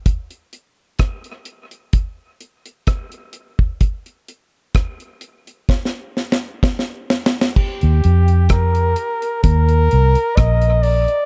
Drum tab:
CC |------------------------------------------------|------------------------------------------------|x-----------------------------------------------|
HH |x--x--x-----x--x--x--x--x-----x--x--x--x--x-----|x--x--x-----x--x--x--x--------------------------|---x--x--x--x--x--x--x--x--x--x--x--x--x--o--x--|
SD |------------r-----------------------r-----------|------------r-----------o-o---o-o---o-o---o-o-o-|------------r-----------------------r-----------|
BD |o-----------o-----------o-----------o--------o--|o-----------o-----------o-----------o-----------|o-----------o-----------o-----------o-----------|